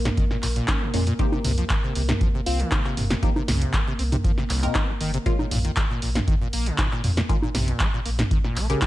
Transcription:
Already playing: analog synth pad A#3 A#4
0.05 acid bass A#2, snare, closed hi-hat, mid tom, high conga
0.17 acid bass D#3, kick, closed hi-hat
0.31 acid bass A#2, snare
0.42 sub bass A#1, acid bass A#2, clap, open hi-hat
0.56 acid bass A#2, closed hi-hat
0.68 acid bass C#4, kick, clap, closed hi-hat, high conga
0.82 acid bass A#2
0.94 sub bass F2, acid bass A#2, synth stab G#3 A#3 C#4 F4, open hi-hat
1.07 acid bass A#2, closed hi-hat
1.19 acid bass C3, synth stab A#3 C4 D#4 G4, kick, closed hi-hat
1.32 acid bass C3, high conga
1.44 sub bass C2, acid bass C3, mid tom, open hi-hat
1.58 acid bass F3, closed hi-hat
1.70 acid bass A#3, kick, clap, closed hi-hat
1.83 acid bass C3
1.95 sub bass C2, acid bass C3, open hi-hat
2.09 acid bass C3, snare, closed hi-hat, mid tom, high conga
2.21 acid bass F3, kick, closed hi-hat
2.34 acid bass C3
2.46 sub bass C2, acid bass C4, fm electric piano F4, open hi-hat
2.60 acid bass D#3, closed hi-hat
2.71 acid bass C3, kick, clap, closed hi-hat, high conga
2.85 acid bass C3, clap
2.97 sub bass G1, acid bass C3, mid tom, open hi-hat
3.10 acid bass C3, snare, closed hi-hat
3.23 acid bass F3, synth stab A#3 C4 D#4 G4, kick, closed hi-hat
3.36 acid bass C3, high conga
3.48 sub bass C2, acid bass C#3, snare, mid tom, open hi-hat
3.62 acid bass C3, closed hi-hat
3.73 acid bass C4, kick, clap, closed hi-hat
3.87 acid bass C3
3.99 sub bass C2, acid bass C4, open hi-hat
4.12 acid bass C3, closed hi-hat, mid tom, high conga
4.24 acid bass F3, kick, closed hi-hat
4.38 acid bass C3, snare
4.50 acid bass C2, sub bass C2, clap, open hi-hat
4.63 acid bass C3, synth stab A#3 C4 D#4 A#4, closed hi-hat
4.75 acid bass C4, kick, clap, closed hi-hat, high conga
4.89 acid bass C#3
5.01 sub bass G1, acid bass D#3, open hi-hat
5.14 acid bass C3, closed hi-hat
5.26 acid bass A#2, synth stab G#3 A#3 C#4 F4, kick, closed hi-hat
5.39 acid bass A#2, high conga
5.51 sub bass A#1, acid bass A#2, mid tom, open hi-hat
5.65 acid bass D#3, closed hi-hat
5.76 acid bass G#3, kick, clap, closed hi-hat
5.90 acid bass A#2
6.02 sub bass A#1, acid bass A#2, open hi-hat
6.15 acid bass A#2, snare, closed hi-hat, mid tom, high conga
6.28 acid bass D#3, kick, closed hi-hat
6.41 acid bass A#2
6.53 sub bass A#1, acid bass A#3, open hi-hat
6.66 acid bass C#3, closed hi-hat
6.78 acid bass A#2, kick, clap, closed hi-hat, high conga
6.91 acid bass A#2, clap
7.04 sub bass F2, acid bass A#2, mid tom, open hi-hat
7.17 acid bass A#2, snare, closed hi-hat
7.29 acid bass D#3, synth stab G#3 A#3 C#4 F4, kick, closed hi-hat
7.42 acid bass A#2, high conga
7.55 sub bass A#1, acid bass C3, snare, mid tom, open hi-hat
7.68 acid bass A#2, closed hi-hat
7.80 acid bass A#3, kick, clap, closed hi-hat
7.94 acid bass A#2
8.06 sub bass A#1, acid bass A#3, open hi-hat
8.19 acid bass A#2, snare, closed hi-hat, mid tom, high conga
8.31 acid bass D#3, kick, closed hi-hat
8.44 acid bass A#2, snare
8.56 sub bass A#1, acid bass A#3, clap, open hi-hat
8.70 acid bass C#3, synth stab G#3 A#3 C#4 G4, closed hi-hat
8.82 acid bass F3, kick, clap, closed hi-hat, high conga

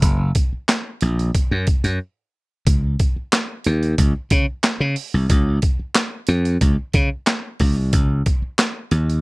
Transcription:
0.02 slap bass F#1, kick, closed hi-hat
0.35 kick, closed hi-hat
0.53 muted slap bass stroke
0.69 snare, clap, closed hi-hat
1.01 slap bass A#1, closed hi-hat
1.19 closed hi-hat
1.35 kick, closed hi-hat
1.51 slap bass F#2
1.67 kick, closed hi-hat
1.84 slap bass F#2, closed hi-hat
2.67 slap bass C#2, kick, closed hi-hat
3.00 kick, closed hi-hat
3.16 muted slap bass stroke
3.33 snare, clap, closed hi-hat
3.64 slap bass D#2, closed hi-hat
3.83 closed hi-hat
3.98 slap bass C#2, kick, closed hi-hat
4.30 slap bass C#3, kick, closed hi-hat
4.63 snare, clap, closed hi-hat
4.80 slap bass C#3
4.96 open hi-hat
5.14 slap bass C2
5.30 slap bass C#2, kick, closed hi-hat
5.62 kick, closed hi-hat
5.79 muted slap bass stroke
5.95 snare, clap, closed hi-hat
6.27 slap bass F2, closed hi-hat
6.45 closed hi-hat
6.61 slap bass C#2, kick, closed hi-hat
6.93 slap bass C#3, kick, closed hi-hat
7.26 snare, clap, closed hi-hat
7.60 slap bass C#2, kick, open hi-hat
7.77 slap bass C2
7.93 slap bass C#2, kick, closed hi-hat
8.26 kick, closed hi-hat
8.42 muted slap bass stroke
8.59 snare, clap, closed hi-hat
8.91 slap bass D#2, closed hi-hat
9.10 closed hi-hat

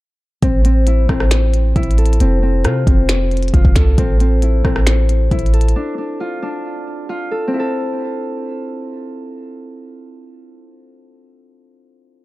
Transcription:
0.43 808-style bass A1, harp C4, kick, closed hi-hat
0.65 harp C4, closed hi-hat
0.87 harp E4, closed hi-hat
1.09 808-style bass A1, harp C4, kick, cross-stick
1.20 cross-stick
1.31 finger snap, snare, closed hi-hat
1.54 closed hi-hat
1.76 808-style bass A1, harp E4, kick, closed hi-hat
1.83 closed hi-hat
1.91 closed hi-hat
1.98 harp A4, closed hi-hat
2.06 closed hi-hat
2.13 closed hi-hat
2.20 808-style bass F1, harp C4, closed hi-hat
2.43 harp C4
2.65 808-style bass C3, harp F4, cross-stick, closed hi-hat
2.87 808-style bass F1, harp C4, kick, closed hi-hat
3.09 finger snap, snare, closed hi-hat
3.31 closed hi-hat
3.37 closed hi-hat
3.43 closed hi-hat
3.48 closed hi-hat
3.54 808-style bass F1, harp F4, kick, closed hi-hat
3.65 808-style bass F1, kick
3.76 808-style bass C2, harp A4, finger snap, kick, snare, closed hi-hat
3.98 808-style bass A1, harp C4, kick, closed hi-hat
4.20 harp C4, closed hi-hat
4.42 harp E4, closed hi-hat
4.65 808-style bass A1, harp C4, kick, cross-stick
4.76 cross-stick
4.87 finger snap, snare, closed hi-hat
5.09 closed hi-hat
5.31 808-style bass A1, harp E4, kick, closed hi-hat
5.39 closed hi-hat
5.46 closed hi-hat
5.54 harp A4, closed hi-hat
5.61 closed hi-hat
5.69 closed hi-hat
5.76 harp D4
5.98 harp D4
6.20 harp F4
6.42 harp D4
7.09 harp F4
7.31 harp A4
7.48 harp C4
7.54 harp E4
7.60 harp A4

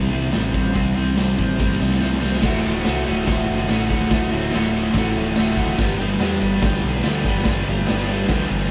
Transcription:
Already playing: picked electric bass C2, overdriven electric guitar C4
0.10 picked electric bass C2, overdriven electric guitar C3 G3 C4
0.31 overdriven electric guitar C3 G3 C4, snare, open hi-hat
0.35 picked electric bass A1
0.52 picked electric bass A1, overdriven electric guitar C3 G3 C4, kick
0.74 picked electric bass C2, overdriven electric guitar C3 G3 C4, kick, open hi-hat
0.94 picked electric bass C2, overdriven electric guitar C3 G3 C4
1.15 picked electric bass C2, overdriven electric guitar C3 G3 C4, snare, open hi-hat
1.36 picked electric bass A1, overdriven electric guitar C3 G3 C4, kick
1.57 picked electric bass G1, overdriven electric guitar C3 G3 C4, kick, snare
1.70 snare
1.79 picked electric bass C2, overdriven electric guitar C3 G3 C4, snare
1.91 snare
2.01 picked electric bass C2, overdriven electric guitar C3 G3 C4, snare
2.12 snare
2.20 picked electric bass C2, overdriven electric guitar C3 G3 C4, snare
2.32 snare
2.41 picked electric bass D1, overdriven electric guitar D2 A2 D3 A3, kick, snare, crash
2.45 overdriven electric guitar F#4
2.63 picked electric bass D1, overdriven electric guitar D3 A3 F#4
2.85 picked electric bass C2, overdriven electric guitar A2 D3 A3 F#4, snare, open hi-hat
3.05 overdriven electric guitar A3 F#4
3.09 picked electric bass D1, overdriven electric guitar D3
3.25 picked electric bass D1, overdriven electric guitar D2 A2 D3 A3 F#4, kick, snare, open hi-hat
3.50 picked electric bass F#1
3.68 picked electric bass A1, overdriven electric guitar A2 D3 A3 F#4, snare, open hi-hat
3.90 picked electric bass D1, overdriven electric guitar D3 A3 F#4, kick
4.09 picked electric bass D1, overdriven electric guitar D2 A2 D3 A3 F#4, kick, snare, open hi-hat
4.32 picked electric bass D1, overdriven electric guitar D3 A3 F#4
4.52 picked electric bass D1, overdriven electric guitar A2 D3 A3 F#4, snare, open hi-hat
4.74 overdriven electric guitar A3 F#4
4.78 overdriven electric guitar D3
4.94 picked electric bass A1, overdriven electric guitar D2 A2 D3 A3, kick, snare, open hi-hat
4.98 overdriven electric guitar F#4
5.16 picked electric bass D1
5.35 picked electric bass D1, overdriven electric guitar A2 D3 A3, snare, open hi-hat
5.40 overdriven electric guitar F#4
5.57 overdriven electric guitar D3 A3 F#4, kick
5.77 picked electric bass G1, overdriven electric guitar G2 D3 G3 B3, kick, snare, open hi-hat
5.81 overdriven electric guitar D4 G4
5.99 picked electric bass G1, overdriven electric guitar B3 D4 G4
6.03 overdriven electric guitar G3
6.19 picked electric bass E2, overdriven electric guitar G3 B3 D4 G4, snare, open hi-hat
6.40 picked electric bass G1, overdriven electric guitar G3 B3 D4 G4
6.62 picked electric bass G1, overdriven electric guitar G2 D3 G3 B3 D4 G4, kick, snare, open hi-hat
6.83 picked electric bass B1
7.02 picked electric bass D2, overdriven electric guitar G3 B3 D4 G4, snare, open hi-hat
7.22 picked electric bass G1, overdriven electric guitar B3 D4 G4, kick
7.27 overdriven electric guitar G3
7.44 picked electric bass G1, overdriven electric guitar G2 D3 G3, kick, snare, open hi-hat
7.48 overdriven electric guitar B3 D4 G4
7.66 picked electric bass G1, overdriven electric guitar G3 B3 D4 G4
7.87 picked electric bass G1, overdriven electric guitar G3 B3 D4, snare, open hi-hat
7.91 overdriven electric guitar G4
8.07 overdriven electric guitar G3 B3 D4 G4
8.27 picked electric bass D2, overdriven electric guitar G2 D3 G3 B3 D4 G4, kick, snare, open hi-hat
8.50 picked electric bass G1

